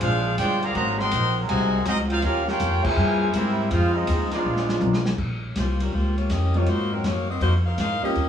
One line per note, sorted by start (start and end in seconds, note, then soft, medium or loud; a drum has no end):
0.00 0.37 A#1 loud
0.00 0.35 G#3 medium
0.00 0.36 G#3 loud
0.00 0.35 D4 medium
0.00 0.36 D4 medium
0.00 0.35 D4 medium
0.00 0.35 F4 medium
0.00 0.36 G#4 medium
0.00 0.35 G#4 medium
0.00 0.36 C5 loud
0.00 0.35 C5 medium
0.00 0.35 F5 loud
0.00 kick soft
0.00 ride medium
0.37 0.74 G1 loud
0.37 0.60 G#3 loud
0.37 0.61 D4 loud
0.37 0.61 F4 medium
0.37 0.60 G4 medium
0.37 0.61 C5 medium
0.37 0.61 D5 loud
0.37 0.61 G5 loud
0.37 kick soft
0.37 hi-hat pedal medium
0.37 ride medium
0.61 0.74 D3 loud
0.61 0.74 F3 loud
0.61 0.72 A#3 medium
0.61 0.76 G#4 loud
0.61 0.75 D5 medium
0.61 0.76 F5 loud
0.61 0.74 A#5 loud
0.61 ride medium
0.73 1.11 G#1 medium
0.73 0.96 D#3 loud
0.73 0.96 F#3 loud
0.73 0.97 A#3 loud
0.73 0.98 F#4 loud
0.73 0.98 C5 loud
0.73 0.98 D#5 medium
0.73 0.98 A#5 loud
0.73 kick soft
0.73 ride medium
0.97 1.35 D#3 loud
0.97 1.35 F#3 loud
0.97 1.35 C4 loud
0.97 1.37 A#4 loud
0.97 1.37 D#5 medium
0.97 1.37 F#5 loud
0.97 1.37 C6 loud
0.97 snare soft
1.11 1.48 A#1 loud
1.11 kick soft
1.11 hi-hat pedal medium
1.11 ride medium
1.37 1.84 F#3 loud
1.37 1.84 C4 loud
1.37 1.84 F#4 medium
1.37 1.84 A#4 loud
1.47 1.85 C2 loud
1.47 1.83 C3 loud
1.47 1.83 D#3 loud
1.47 1.83 G#3 medium
1.47 1.83 F#4 loud
1.47 1.83 C5 medium
1.47 1.83 D#5 loud
1.47 1.83 G#5 loud
1.47 kick soft
1.47 ride medium
1.84 2.22 C#2 medium
1.84 1.95 F#3 loud
1.84 1.95 C4 medium
1.84 1.98 C4 medium
1.84 1.96 D#4 medium
1.84 1.98 F#4 medium
1.84 1.98 A#4 medium
1.84 1.98 D#5 loud
1.84 kick soft
1.84 hi-hat pedal medium
1.84 ride medium
2.08 2.21 F#3 medium
2.08 2.21 C4 medium
2.08 2.23 D#4 medium
2.08 2.20 F4 medium
2.08 2.23 A#4 medium
2.08 2.23 C5 medium
2.08 2.23 F5 loud
2.08 ride medium
2.22 2.59 D#2 loud
2.22 2.44 A#3 loud
2.22 2.44 C#4 loud
2.22 2.46 C#4 loud
2.22 2.45 F4 medium
2.22 2.46 G4 medium
2.22 2.46 A#4 medium
2.22 2.46 F5 loud
2.22 kick soft
2.22 ride medium
2.45 2.83 A#3 loud
2.45 2.83 C#4 medium
2.45 2.83 G4 medium
2.45 snare medium
2.49 2.85 F4 medium
2.49 2.84 A#4 medium
2.49 2.85 C#5 medium
2.49 2.85 G5 loud
2.60 2.83 F2 loud
2.60 kick soft
2.60 hi-hat pedal medium
2.60 ride medium
2.83 3.33 A#2 loud
2.83 3.33 E3 loud
2.83 3.32 C4 medium
2.83 3.32 E4 medium
2.83 3.34 E4 medium
2.83 3.33 G#4 loud
2.83 3.32 G#4 loud
2.83 3.34 A#4 medium
2.83 3.32 A#4 loud
2.83 3.34 C5 loud
2.83 3.34 G#5 loud
2.83 muted upright bass stroke soft
2.83 kick loud
2.83 crash loud
2.97 3.33 G2 loud
3.32 3.70 G#2 medium
3.32 3.68 G3 medium
3.32 3.68 A#3 medium
3.32 3.69 C4 medium
3.32 3.67 E4 medium
3.32 3.69 G4 medium
3.32 3.69 A#4 medium
3.32 3.69 E5 loud
3.32 kick soft
3.32 hi-hat pedal medium
3.32 ride medium
3.70 4.06 F2 loud
3.70 3.94 G#3 loud
3.70 3.94 C4 medium
3.70 3.95 D#4 medium
3.70 3.95 F4 loud
3.70 3.95 G#4 medium
3.70 3.95 C5 medium
3.70 3.95 F5 loud
3.70 kick soft
3.70 ride medium
3.94 4.32 G#3 medium
3.94 4.32 C4 medium
3.94 4.33 C4 medium
3.94 4.32 D#4 medium
3.94 4.32 F4 medium
3.94 4.33 G#4 medium
3.94 4.33 D#5 loud
4.07 4.30 D#2 loud
4.07 kick soft
4.07 hi-hat pedal medium
4.07 ride medium
4.31 5.03 F3 medium
4.31 4.40 G#3 loud
4.31 5.02 G#3 medium
4.31 4.41 B3 loud
4.31 5.03 B3 medium
4.31 4.40 D4 medium
4.31 5.03 D4 medium
4.31 5.03 F4 medium
4.31 5.03 G#4 medium
4.31 4.41 A#4 loud
4.31 5.03 D5 medium
4.31 muted upright bass stroke soft
4.31 snare soft
4.31 ride medium
4.45 4.80 A#1 medium
4.56 snare medium
4.69 snare medium
4.80 5.17 B1 loud
4.80 5.18 G#3 medium
4.80 5.18 B3 medium
4.80 5.18 D4 medium
4.80 5.18 A#4 loud
4.80 hi-hat pedal medium
4.80 high tom medium
4.93 snare medium
5.06 snare loud
5.18 5.54 A#1 medium
5.18 kick medium
5.18 crash medium
5.55 5.91 C2 medium
5.55 5.79 A#3 medium
5.55 5.79 F4 medium
5.55 5.79 G4 medium
5.55 5.80 C5 medium
5.55 kick soft
5.55 snare medium
5.55 hi-hat pedal medium
5.55 ride medium
5.80 5.93 G3 medium
5.80 5.93 C#4 medium
5.80 5.92 F4 medium
5.80 5.93 A#4 medium
5.80 ride medium
5.93 6.28 C#2 medium
5.93 6.16 A#3 medium
5.93 6.17 F4 medium
5.93 6.17 G4 medium
5.93 6.18 C5 medium
5.93 kick soft
6.17 6.29 A#3 medium
6.17 6.29 F4 medium
6.17 6.29 G4 medium
6.17 6.29 C#5 medium
6.17 ride soft
6.30 6.66 F2 medium
6.30 6.55 C#4 medium
6.30 6.54 G4 medium
6.30 6.55 A#4 medium
6.30 6.55 D#5 medium
6.30 kick soft
6.30 snare medium
6.30 hi-hat pedal medium
6.30 ride medium
6.54 6.66 F#3 medium
6.54 6.66 A#3 soft
6.54 6.67 A#3 medium
6.54 6.66 C4 medium
6.54 6.66 D#4 soft
6.54 6.67 F4 medium
6.54 6.66 F4 medium
6.54 6.68 G4 medium
6.54 6.67 C#5 medium
6.54 ride soft
6.66 7.03 G#2 medium
6.66 6.92 A#3 medium
6.66 6.92 D#4 medium
6.66 6.92 F#4 medium
6.66 6.92 C5 loud
6.66 kick soft
6.66 ride medium
6.93 7.05 F#3 medium
6.93 7.05 C4 medium
6.93 7.05 D#4 medium
6.93 7.05 A#4 medium
7.04 7.40 F#2 medium
7.04 7.29 A#3 medium
7.04 7.29 D#4 medium
7.04 7.28 F#4 medium
7.04 7.29 C#5 medium
7.04 kick soft
7.04 snare medium
7.04 hi-hat pedal soft
7.04 ride medium
7.29 7.41 C4 medium
7.29 7.41 F#4 medium
7.29 7.41 A#4 medium
7.29 7.41 D#5 medium
7.40 7.77 F2 medium
7.40 7.53 A#3 medium
7.40 7.53 D#4 medium
7.40 7.53 F#4 medium
7.40 7.53 C5 loud
7.40 kick soft
7.40 ride medium
7.66 7.77 D#4 medium
7.66 7.77 A#4 medium
7.66 7.78 C5 medium
7.66 7.77 F5 medium
7.78 8.01 G#2 medium
7.78 8.02 D#4 medium
7.78 8.02 A#4 medium
7.78 8.01 C5 medium
7.78 8.01 F5 loud
7.78 kick soft
7.78 snare medium
7.78 hi-hat pedal medium
7.78 ride medium
8.02 8.13 G3 medium
8.02 8.14 A#3 soft
8.02 8.14 C4 soft
8.02 8.14 C#4 soft
8.02 8.29 C#4 medium
8.02 8.14 F4 medium
8.02 8.29 G4 medium
8.02 8.29 A#4 medium
8.02 8.29 D#5 loud
8.02 muted upright bass stroke soft
8.15 8.29 D#2 medium
8.15 kick soft
8.15 ride medium